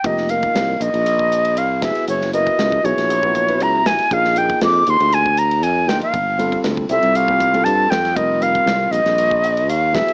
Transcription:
0.04 fretless electric bass F1, grand piano F3 A#3 D#4 G4, flute D#5, kick, hi-hat pedal, ride
0.17 snare
0.29 grand piano F3 A#3 D#4 A#4, flute F5, hi-hat pedal, ride
0.43 kick, ride
0.55 fretless electric bass C2, snare, hi-hat pedal, ride
0.81 fretless electric bass A#1, flute D#5, hi-hat pedal, ride
0.94 fretless electric bass A#1, ride
1.06 hi-hat pedal, ride
1.19 kick
1.32 hi-hat pedal, ride
1.45 ride
1.57 fretless electric bass C2, flute F5, hi-hat pedal, ride
1.81 fretless electric bass F#1, grand piano F#3 B3 E4 G#4, flute E5, kick, snare, hi-hat pedal, ride
1.95 muted fretless electric bass stroke, snare, ride
2.08 fretless electric bass F#1, flute C#5, hi-hat pedal, ride
2.21 snare
2.33 grand piano F#3 B3 E4 A#4, flute D#5, hi-hat pedal, ride
2.47 kick, ride
2.59 fretless electric bass C#2, snare, hi-hat pedal, ride
2.72 kick
2.83 fretless electric bass B1, grand piano F#3 B3 E4 G#4, flute C#5, hi-hat pedal, ride
2.97 fretless electric bass A#1, snare, ride
3.10 hi-hat pedal, ride
3.23 grand piano F#3 B3 E4 F#4, kick
3.35 kick, hi-hat pedal, ride
3.48 grand piano F#3 B3 E4 B4, ride
3.60 fretless electric bass C#2, flute A#5, hi-hat pedal, ride
3.86 fretless electric bass A#1, flute G#5, snare, hi-hat pedal, ride
3.99 muted fretless electric bass stroke, snare, ride
4.11 fretless electric bass A#1, grand piano F3 A#3 D#4 G#4, flute F5, kick, hi-hat pedal, ride
4.25 snare
4.36 grand piano F3 A#3 D#4 G#4, flute G5, hi-hat pedal, ride
4.49 kick, ride
4.61 fretless electric bass F2, flute D6, snare, hi-hat pedal, ride
4.87 fretless electric bass D#2, flute C6, hi-hat pedal, ride
5.00 fretless electric bass D2, ride
5.12 flute G#5, hi-hat pedal, ride
5.26 kick
5.37 flute A#5, hi-hat pedal, ride
5.51 ride
5.63 fretless electric bass F2, flute G#5, hi-hat pedal, ride
5.87 fretless electric bass D2, grand piano F3 A#3 D#4 F4, flute G5, snare, hi-hat pedal, ride
6.01 flute F5, ride
6.13 fretless electric bass G1, kick, hi-hat pedal, ride
6.39 grand piano G3 C4 F4 A4, hi-hat pedal, ride
6.52 kick, ride
6.64 fretless electric bass D2, snare, hi-hat pedal, ride
6.77 kick
6.89 fretless electric bass C2, grand piano G3 C4 F4 A4, flute E5, hi-hat pedal, ride
7.03 fretless electric bass C2, ride
7.15 flute F5, hi-hat pedal, ride
7.28 grand piano G3 C4 F4 G4, kick
7.40 kick, hi-hat pedal, ride
7.54 grand piano G3 C4 F4 A4, ride
7.64 fretless electric bass G2, flute A5, hi-hat pedal, ride
7.90 fretless electric bass F2, flute G5, snare, hi-hat pedal, ride
8.05 snare, ride
8.16 fretless electric bass F1, grand piano G3 C4 F4 A#4, flute D#5, kick, hi-hat pedal, ride
8.41 grand piano G3 C4 F4 A#4, flute F5, hi-hat pedal, ride
8.55 kick, ride
8.66 fretless electric bass C2, snare, hi-hat pedal, ride
8.91 fretless electric bass A#1, flute D#5, hi-hat pedal, ride
9.05 fretless electric bass A#1, snare, ride
9.18 hi-hat pedal, ride
9.31 kick
9.44 hi-hat pedal, ride
9.57 ride
9.68 fretless electric bass D#2, flute F5, hi-hat pedal, ride
9.93 fretless electric bass F#1, grand piano F#3 B3 E4 G#4, flute E5, kick, snare, hi-hat pedal, ride
10.08 ride

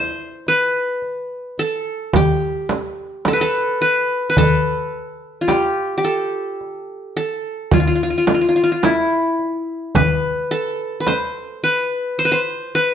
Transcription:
Already playing: qanun D4 E4 C5
0.47 qanun B4, darbuka ka
1.02 darbuka ka
1.58 qanun A4, darbuka ka
2.13 qanun G4, darbuka dum, frame drum
2.41 darbuka ka
2.69 darbuka tek, frame drum
3.25 qanun A4, darbuka tek, frame drum
3.33 qanun B4
3.41 qanun A4
3.81 qanun B4, darbuka ka
4.30 qanun B4
4.37 qanun A4, frame drum, darbuka dum
5.41 qanun F4
5.48 qanun G4, darbuka tek, frame drum
5.98 qanun G4
6.04 qanun A4, darbuka ka
6.61 darbuka ka
7.17 qanun A4
7.71 qanun F4, frame drum, darbuka dum
7.80 qanun F4
7.87 qanun F4
7.95 qanun F4
8.00 qanun F4, darbuka ka
8.10 qanun F4
8.18 qanun F4
8.27 qanun F4, darbuka tek, frame drum
8.34 qanun F4
8.41 qanun F4
8.49 qanun F4
8.56 qanun F4
8.64 qanun F4
8.72 qanun F4
8.83 qanun E4, darbuka tek, frame drum
9.39 darbuka ka
9.95 qanun B4, darbuka dum, frame drum
10.51 qanun A4
11.00 qanun B4
11.07 qanun C5, darbuka tek, frame drum
11.63 qanun B4, darbuka ka
12.18 qanun C5, darbuka ka
12.25 qanun B4
12.32 qanun C5
12.75 qanun B4, darbuka ka

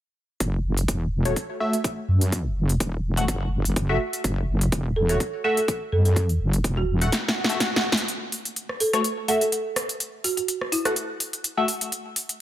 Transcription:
0.40 wobble bass F#1, kick, closed hi-hat
0.64 wobble bass F#1
0.77 closed hi-hat
0.88 wobble bass E1, kick, closed hi-hat
1.25 synth stab A3 F#4 C#5, closed hi-hat
1.36 kick, closed hi-hat
1.60 synth stab A3 F#4 E5
1.73 closed hi-hat
1.84 kick, closed hi-hat
2.08 wobble bass F#2
2.21 closed hi-hat
2.32 kick, closed hi-hat
2.56 wobble bass F#1
2.69 closed hi-hat
2.80 wobble bass E1, kick, closed hi-hat
3.17 synth stab A3 F#4 F#5, closed hi-hat
3.28 wobble bass F#1, kick, closed hi-hat
3.65 wobble bass F#1, closed hi-hat
3.76 wobble bass F#1, kick, closed hi-hat
3.89 synth stab A3 F#4 E5
4.13 closed hi-hat
4.24 wobble bass F#1, kick, closed hi-hat
4.48 wobble bass F#1
4.61 closed hi-hat
4.72 wobble bass E1, kick, closed hi-hat
4.96 marimba A4
5.09 synth stab A3 F#4 C#5, closed hi-hat
5.20 kick, closed hi-hat
5.44 synth stab A3 F#4 E5, marimba A4
5.57 marimba A4, closed hi-hat
5.68 kick, closed hi-hat
5.92 wobble bass F#2, marimba A4
6.05 marimba A4, closed hi-hat
6.16 kick, closed hi-hat
6.29 closed hi-hat
6.40 wobble bass F#1
6.53 closed hi-hat
6.64 wobble bass E1, kick, closed hi-hat
6.77 marimba F#4
7.01 synth stab A3 F#4 F#5, closed hi-hat
7.12 snare, closed hi-hat, swell
7.28 snare
7.44 snare
7.49 synth stab A3 F#4 E5, closed hi-hat
7.60 snare, closed hi-hat
7.76 snare
7.92 snare
7.97 closed hi-hat
8.08 closed hi-hat
8.32 open hi-hat
8.45 closed hi-hat
8.56 closed hi-hat
8.69 cross-stick
8.80 marimba A4, open hi-hat
8.93 synth stab A3 F#4 C#5, cross-stick, closed hi-hat
9.04 closed hi-hat
9.28 synth stab A3 F#4 E5, marimba A4, open hi-hat
9.41 marimba A4, closed hi-hat
9.52 closed hi-hat
9.76 cross-stick, open hi-hat
9.89 closed hi-hat
10.00 closed hi-hat
10.24 marimba F#4, open hi-hat
10.37 marimba F#4, closed hi-hat
10.48 closed hi-hat
10.61 cross-stick
10.72 marimba E4, open hi-hat
10.85 synth stab A3 F#4 F#5, cross-stick, closed hi-hat
10.96 closed hi-hat
11.20 open hi-hat
11.33 closed hi-hat
11.44 closed hi-hat
11.57 synth stab A3 F#4 E5
11.68 open hi-hat
11.81 closed hi-hat
11.92 closed hi-hat
12.16 open hi-hat
12.29 closed hi-hat

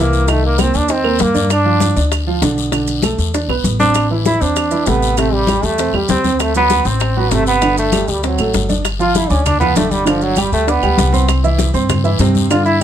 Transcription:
Already playing: grand piano E3 E4
0.00 upright bass C2, trombone A#3
0.13 high conga, short guiro, maracas
0.27 grand piano D#3 D#4, trombone A3, high bongo, high conga, long guiro, claves, maracas
0.44 trombone A#3, high bongo, high conga
0.58 grand piano A#3 A#4, trombone C4, high bongo, high conga, short guiro, claves, maracas
0.74 upright bass D#2, trombone D4, high bongo, short guiro, maracas
0.88 grand piano D#4 D#5, high bongo, high conga, long guiro, maracas
0.92 trombone C4
1.04 grand piano A#3 A#4, high bongo, high conga, claves
1.19 upright bass G2, trombone A#3, high bongo, low bongo, high conga, short guiro, maracas
1.34 grand piano D4 D5, high conga, short guiro, maracas
1.50 trombone D4, high bongo, high conga, long guiro, claves, maracas
1.65 grand piano F3 F4, high conga
1.80 high bongo, high conga, short guiro, maracas
1.96 upright bass D2, grand piano D4 D5, high conga, short guiro, maracas
2.11 high bongo, high conga, long guiro, claves, maracas
2.27 grand piano F3 F4, high conga
2.42 upright bass B1, grand piano D3 D4, high bongo, low bongo, high conga, short guiro, maracas
2.57 high conga, short guiro, maracas
2.72 grand piano D3 D4, high bongo, high conga, long guiro, claves, maracas
2.87 high bongo, high conga, maracas
3.02 grand piano A3 A4, high bongo, high conga, short guiro, claves, maracas
3.18 upright bass E2, high bongo, short guiro, maracas
3.34 grand piano D4 D5, high bongo, high conga, long guiro, maracas
3.48 upright bass B1, grand piano B3 B4, high bongo, high conga, claves
3.64 upright bass A1, high conga, short guiro, maracas
3.79 grand piano C4 C5, trombone D4, low bongo, high conga, short guiro, maracas
3.94 high bongo, high conga, long guiro, claves, maracas
4.11 grand piano E3 E4, high conga
4.25 trombone E4, high bongo, high conga, short guiro, maracas
4.41 upright bass E2, grand piano C4 C5, trombone D4, high conga, short guiro, maracas
4.56 high bongo, high conga, long guiro, claves, maracas
4.71 grand piano E3 E4, high conga, maracas
4.86 upright bass A1, grand piano C3 A3, trombone B3, high bongo, low bongo, high conga, short guiro, maracas
5.02 high conga, short guiro, maracas
5.17 grand piano C3 C4, trombone A3, high bongo, high conga, long guiro, claves, maracas
5.32 trombone G3, high bongo, high conga
5.47 grand piano G3 G4, high bongo, high conga, short guiro, claves, maracas
5.63 upright bass E2, trombone A3, high bongo, short guiro, maracas
5.78 grand piano C4 C5, high bongo, high conga, long guiro, maracas
5.93 upright bass E2, grand piano G3 G4, high bongo, high conga, claves
6.08 upright bass D2, trombone C4, high bongo, low bongo, high conga, short guiro, maracas
6.24 grand piano C4 C5, high conga, short guiro, maracas
6.40 trombone A3, high bongo, high conga, long guiro, claves, maracas
6.55 grand piano F#3 F#4, trombone B3, high conga, maracas
6.70 high bongo, high conga, short guiro, maracas
6.85 upright bass A1, grand piano C4 C5, trombone C4, high conga, short guiro, maracas
7.00 high bongo, high conga, long guiro, claves, maracas
7.16 grand piano F#3 F#4, trombone B3, high conga
7.31 upright bass G1, grand piano C3 C4, trombone A3, high bongo, low bongo, high conga, short guiro, maracas
7.46 trombone B3, high conga, short guiro, maracas
7.62 grand piano D3 D4, high bongo, high conga, long guiro, claves, maracas
7.77 trombone A3, high bongo, high conga, maracas
7.92 grand piano G3 G4, high bongo, high conga, short guiro, claves, maracas
8.08 upright bass D2, trombone G3, high bongo, short guiro, maracas
8.23 trombone F#3, grand piano C4 C5, high bongo, high conga, long guiro, maracas
8.38 upright bass A1, grand piano A3 A4, high bongo, high conga, claves, maracas
8.54 upright bass G1, high bongo, low bongo, high conga, short guiro, maracas
8.69 grand piano D4 D5, high conga, short guiro, maracas
8.85 high bongo, high conga, long guiro, claves, maracas
8.99 grand piano F3 F4 F5, trombone F4, high conga, maracas
9.15 trombone E4, high bongo, high conga, short guiro, maracas
9.30 upright bass D2, trombone C#4, grand piano D4 D5 D6, high conga, short guiro, maracas
9.45 trombone D4, high bongo, high conga, low conga, long guiro, claves, maracas
9.60 grand piano F3 F4 F5, trombone B3, high conga, low conga, maracas
9.76 upright bass G1, grand piano D3 D4 D5, trombone A3, high bongo, low bongo, high conga, short guiro, maracas
9.91 trombone G3, high conga, short guiro, maracas
10.06 grand piano D3 D4 D5, trombone F3, high bongo, high conga, long guiro, claves, maracas
10.21 trombone F#3, high bongo, high conga, maracas
10.36 grand piano G3 G4 G5, trombone G3, high bongo, high conga, short guiro, claves, maracas
10.52 upright bass D2, trombone A3, high conga, short guiro, maracas
10.67 trombone B3, grand piano D4 D5 D6, high bongo, high conga, long guiro, maracas
10.83 upright bass D2, grand piano G3 G4 G5, high bongo, high conga, claves, maracas
10.98 upright bass C2, high bongo, low bongo, high conga, short guiro, maracas
11.12 grand piano C4 C5 C6, high bongo, high conga, short guiro, maracas
11.28 high bongo, high conga, long guiro, claves, maracas
11.44 grand piano E3 E4 E5, high conga, maracas
11.58 high bongo, high conga, short guiro, maracas
11.74 upright bass G2, grand piano C4 C5 C6, high conga, short guiro, maracas
11.89 high bongo, high conga, low conga, long guiro, claves, maracas
12.04 grand piano E3 E4 E5, high conga, maracas
12.19 upright bass G2, grand piano C3 C4 C5, high bongo, low bongo, high conga, short guiro, maracas
12.35 high conga, short guiro, maracas
12.50 grand piano D3 D4 D5, trombone F4, high bongo, high conga, long guiro, claves, maracas
12.65 trombone E4, high bongo, high conga, maracas

